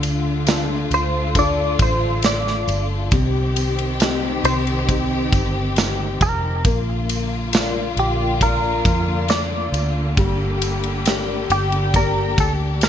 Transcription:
0.00 0.87 D2 medium
0.00 3.07 D3 medium
0.00 3.08 D3 medium
0.00 3.08 A3 medium
0.00 3.08 F4 medium
0.00 ride medium
0.00 tambourine soft
0.47 1.32 D4 soft
0.47 1.33 F4 soft
0.47 1.33 A4 medium
0.47 snare loud
0.47 ride medium
0.47 tambourine medium
0.91 1.75 D2 medium
0.91 1.38 C5 medium
0.91 ride medium
0.91 tambourine soft
1.35 2.21 D4 soft
1.35 2.21 F4 medium
1.35 2.21 A4 medium
1.35 1.78 D5 loud
1.35 kick medium
1.35 ride medium
1.35 tambourine soft
1.79 2.64 A1 medium
1.79 2.25 C5 loud
1.79 kick loud
1.79 ride medium
1.79 tambourine soft
2.22 2.87 D5 medium
2.22 snare loud
2.22 ride medium
2.22 tambourine medium
2.47 snare soft
2.67 3.08 G1 medium
2.67 ride medium
2.67 tambourine soft
3.11 4.40 C2 medium
3.11 6.61 C3 medium
3.11 6.61 D#3 medium
3.11 6.61 C4 medium
3.11 6.61 G4 medium
3.11 kick loud
3.11 ride medium
3.11 tambourine soft
3.56 ride medium
3.56 tambourine medium
3.79 ride medium
4.00 4.86 C4 medium
4.00 4.86 D#4 soft
4.00 4.86 G4 medium
4.00 snare loud
4.00 ride medium
4.00 tambourine medium
4.44 5.28 C2 loud
4.44 4.57 C5 loud
4.44 ride medium
4.44 tambourine soft
4.67 ride soft
4.88 5.74 C4 soft
4.88 5.74 D#4 soft
4.88 5.74 G4 medium
4.88 kick medium
4.88 ride medium
4.88 tambourine soft
5.33 6.17 G1 medium
5.33 kick loud
5.33 ride medium
5.33 tambourine soft
5.76 snare loud
5.76 ride medium
5.76 tambourine medium
6.21 6.62 F1 medium
6.21 6.63 A#4 loud
6.21 kick loud
6.21 ride medium
6.21 tambourine medium
6.63 7.93 A#1 loud
6.63 12.89 D3 medium
6.63 12.89 A#3 medium
6.63 10.14 A#3 medium
6.63 10.14 F4 medium
6.63 kick loud
6.63 ride medium
6.63 tambourine soft
7.09 ride medium
7.09 tambourine medium
7.53 8.39 F4 soft
7.53 8.39 A#4 soft
7.53 8.39 D5 medium
7.53 snare loud
7.53 ride medium
7.53 tambourine medium
7.97 8.81 A#1 medium
7.97 8.44 G4 medium
7.97 ride medium
8.41 9.27 F4 medium
8.41 9.27 A#4 soft
8.41 9.26 A#4 medium
8.41 9.27 D5 medium
8.41 kick medium
8.41 ride medium
8.41 tambourine soft
8.85 9.69 F2 medium
8.85 kick loud
8.85 ride medium
8.85 tambourine soft
9.28 9.92 D5 medium
9.28 snare loud
9.28 ride medium
9.28 tambourine medium
9.72 10.14 D2 medium
9.72 ride medium
9.72 tambourine soft
10.17 11.46 G1 medium
10.17 12.89 G3 medium
10.17 12.89 G4 medium
10.17 kick loud
10.17 ride medium
10.62 ride medium
10.62 tambourine soft
10.84 ride soft
11.05 11.91 G4 soft
11.05 11.92 A#4 soft
11.05 11.92 D5 medium
11.05 snare loud
11.05 ride medium
11.05 tambourine medium
11.50 12.34 G1 loud
11.50 11.96 G4 medium
11.50 ride medium
11.50 tambourine soft
11.72 ride soft
11.94 12.80 A#3 soft
11.94 12.80 G4 medium
11.94 12.40 A#4 loud
11.94 12.80 D5 medium
11.94 kick medium
11.94 ride medium
11.94 tambourine soft
12.38 12.89 D2 medium
12.38 12.52 A4 medium
12.38 kick medium
12.38 ride medium
12.38 tambourine soft
12.81 12.89 A#4 medium
12.81 snare loud
12.81 ride medium
12.81 tambourine medium

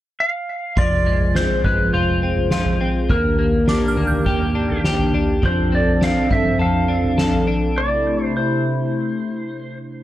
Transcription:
0.20 0.80 F5 medium
0.77 1.46 F1 loud
0.77 3.10 F3 medium
0.77 3.08 F3 medium
0.77 3.08 F4 medium
0.77 3.08 G#4 medium
0.77 3.08 C5 medium
0.77 1.38 D5 medium
0.77 2.56 C6 soft
0.77 kick loud
0.77 floor tom medium
1.06 1.64 G#3 medium
1.21 floor tom medium
1.35 2.22 C4 soft
1.35 1.64 C5 medium
1.35 snare loud
1.64 1.92 G1 medium
1.64 3.09 G#3 medium
1.64 1.93 B4 medium
1.64 kick medium
1.79 floor tom medium
1.93 2.77 F1 medium
1.93 2.50 F4 medium
1.93 3.06 C5 medium
2.23 2.80 C4 medium
2.37 floor tom medium
2.51 3.16 F4 medium
2.51 snare medium
2.66 floor tom medium
2.81 3.16 C4 medium
3.09 3.79 D#2 loud
3.09 5.41 D#3 medium
3.09 3.37 A#3 medium
3.09 5.41 A#3 medium
3.09 10.03 D4 medium
3.09 5.41 G4 medium
3.09 4.81 A#4 medium
3.09 kick medium
3.09 floor tom medium
3.39 3.96 A#3 soft
3.53 floor tom medium
3.68 4.55 D4 medium
3.68 5.47 D6 soft
3.68 snare loud
3.88 5.64 F6 soft
3.97 4.25 D2 medium
3.97 5.49 A#3 medium
4.07 5.81 G6 soft
4.12 floor tom medium
4.26 5.10 D#2 medium
4.26 4.84 G4 medium
4.26 kick medium
4.55 5.14 D4 medium
4.70 floor tom medium
4.84 5.49 G4 medium
4.84 snare loud
4.99 floor tom medium
5.14 5.42 D#2 medium
5.14 5.75 D4 medium
5.43 6.12 F2 loud
5.43 7.77 F3 medium
5.43 7.74 F3 medium
5.43 7.74 C4 medium
5.43 7.75 A4 medium
5.43 5.74 C5 medium
5.43 kick medium
5.43 floor tom loud
5.72 6.30 C4 medium
5.72 6.04 D5 medium
5.87 floor tom medium
6.01 6.88 D4 medium
6.01 6.32 F5 medium
6.01 snare loud
6.31 6.59 G2 medium
6.31 8.32 C4 medium
6.31 6.61 E5 medium
6.31 kick medium
6.46 floor tom medium
6.59 7.43 F2 medium
6.59 7.17 A4 medium
6.59 7.44 F5 medium
6.88 7.47 D4 medium
7.04 floor tom medium
7.18 8.32 A4 medium
7.18 snare loud
7.33 floor tom medium
7.47 8.32 D4 medium
7.77 10.03 C3 medium
7.77 10.03 A3 medium
7.77 10.03 E4 loud
7.77 8.24 D5 medium
8.24 8.36 C5 medium
8.37 9.77 C5 medium

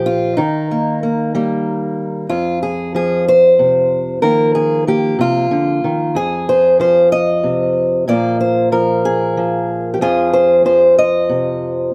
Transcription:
0.00 0.34 A#2 medium
0.00 0.38 F3 medium
0.00 0.36 G4 loud
0.06 0.38 F4 medium
0.37 2.26 D#3 medium
0.37 2.30 D#4 medium
0.71 1.02 A#3 soft
1.03 1.34 A#3 soft
1.35 2.27 G3 medium
1.35 2.31 A#3 soft
2.29 4.23 F2 medium
2.29 2.62 F4 medium
2.63 2.94 G#4 medium
2.95 6.45 F3 medium
2.95 3.27 G#4 medium
3.28 4.22 C5 loud
3.59 4.22 C3 medium
4.22 5.18 D#3 medium
4.22 4.86 A#3 soft
4.22 4.54 A#4 medium
4.55 4.87 G#4 medium
4.87 6.16 A#3 medium
4.87 5.20 G4 medium
5.19 5.51 C3 medium
5.19 6.16 F4 medium
5.51 5.83 D3 medium
5.84 6.16 D#3 medium
6.15 8.07 F2 medium
6.15 7.12 G#4 loud
6.49 6.79 C5 medium
6.80 8.08 F3 medium
6.80 7.12 C5 medium
7.12 8.08 D#5 loud
7.44 8.08 C3 medium
8.08 9.97 A#2 medium
8.08 8.71 F3 soft
8.08 10.02 A#3 soft
8.08 9.05 F4 medium
8.08 8.40 D5 medium
8.41 8.72 C5 medium
8.72 9.37 F3 medium
8.72 9.69 A#4 medium
9.05 9.93 G#4 medium
9.37 10.02 F3 medium
9.94 10.01 G4 medium
10.01 11.94 F2 medium
10.01 10.65 F3 soft
10.01 11.94 F4 soft
10.01 10.98 G#4 medium
10.33 10.65 C5 medium
10.65 11.94 F3 medium
10.65 10.98 C5 medium
10.99 11.94 D#5 loud
11.29 11.94 C3 medium

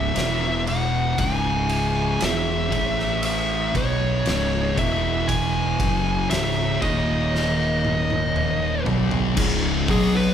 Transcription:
0.00 0.12 C#1 loud
0.00 0.13 C#2 medium
0.00 0.13 G#2 medium
0.00 0.14 C#3 medium
0.00 0.14 C#4 medium
0.00 0.15 G#4 medium
0.00 0.14 E5 medium
0.00 0.63 E5 loud
0.14 1.14 E1 medium
0.14 1.16 E2 medium
0.14 1.17 B2 medium
0.14 1.17 E3 loud
0.14 1.17 E4 medium
0.14 1.17 B4 medium
0.14 1.17 F#5 medium
0.14 snare medium
0.14 ride medium
0.67 1.19 F#5 loud
0.67 ride medium
1.18 2.17 C#1 loud
1.18 2.19 C#2 loud
1.18 2.20 G#2 loud
1.18 2.20 C#3 loud
1.18 2.72 C#4 medium
1.18 2.71 G#4 medium
1.18 2.72 E5 medium
1.18 2.25 G#5 medium
1.18 kick loud
1.18 ride medium
1.69 ride medium
2.21 2.69 E1 medium
2.21 2.73 E2 loud
2.21 2.73 B2 loud
2.21 2.73 E3 loud
2.21 3.24 E5 medium
2.21 snare loud
2.21 ride loud
2.72 3.71 A1 medium
2.72 3.74 A2 medium
2.72 3.74 E3 medium
2.72 3.75 A3 medium
2.72 3.75 A3 loud
2.72 3.74 E4 medium
2.72 3.75 B4 medium
2.72 kick medium
2.72 ride medium
3.00 snare soft
3.23 3.76 E5 medium
3.23 ride loud
3.75 4.23 B1 medium
3.75 4.25 B2 medium
3.75 4.25 F#3 medium
3.75 4.26 B3 medium
3.75 4.77 C#4 medium
3.75 4.77 G#4 medium
3.75 4.78 C#5 medium
3.75 4.77 D#5 medium
3.75 kick loud
3.75 ride medium
4.26 4.74 C#1 medium
4.26 4.76 C#2 medium
4.26 4.77 G#2 loud
4.26 4.77 C#3 loud
4.26 snare loud
4.26 ride medium
4.78 5.76 E1 medium
4.78 5.79 E2 loud
4.78 5.79 B2 loud
4.78 5.79 E3 loud
4.78 5.80 E4 medium
4.78 5.80 B4 medium
4.78 5.31 E5 medium
4.78 5.80 F#5 medium
4.78 kick loud
4.78 ride medium
5.28 6.34 G#5 loud
5.28 kick loud
5.28 ride medium
5.80 6.28 F#1 medium
5.80 6.30 F#2 medium
5.80 6.30 C#3 medium
5.80 6.30 F#3 medium
5.80 6.82 C#4 medium
5.80 6.82 G#4 medium
5.80 9.35 C#5 loud
5.80 kick loud
5.80 ride medium
6.30 6.79 C#1 medium
6.30 6.81 C#2 medium
6.30 6.82 G#2 medium
6.30 6.82 C#3 loud
6.30 6.82 E5 medium
6.30 snare loud
6.30 ride loud
6.82 8.83 D#1 medium
6.82 8.85 D#2 medium
6.82 8.86 A#2 medium
6.82 8.86 D#3 loud
6.82 8.87 D#4 medium
6.82 8.87 A#4 medium
6.82 8.83 D#5 medium
6.82 kick medium
6.82 ride medium
7.35 snare medium
7.85 high tom medium
8.10 high tom medium
8.36 mid tom medium
8.86 9.34 B1 medium
8.86 9.36 B2 loud
8.86 9.36 F#3 loud
8.86 9.36 B3 loud
8.86 floor tom loud
9.11 floor tom medium
9.36 9.85 C#1 loud
9.36 9.87 C#2 loud
9.36 9.87 G#2 loud
9.36 9.87 C#3 loud
9.36 kick loud
9.36 crash loud
9.88 10.34 B1 medium
9.88 10.34 B2 medium
9.88 10.34 F#3 loud
9.88 10.34 B3 loud
9.88 10.34 B3 medium
9.88 10.34 F#4 medium
9.88 10.15 G#4 medium
9.88 10.34 C#5 medium
9.88 kick loud
9.88 open hi-hat medium
10.16 10.34 B4 loud

